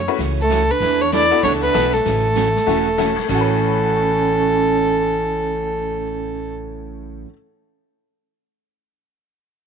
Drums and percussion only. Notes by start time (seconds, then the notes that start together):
0.20 brush sweep, snare
0.51 snare, hi-hat pedal
0.82 brush sweep, snare
1.13 snare, hi-hat pedal
1.43 brush sweep, snare
1.75 snare, hi-hat pedal
1.94 snare
2.06 brush sweep, snare
2.36 snare, hi-hat pedal
2.56 snare
2.68 brush sweep, snare
2.99 snare, hi-hat pedal
3.18 snare
3.29 kick, crash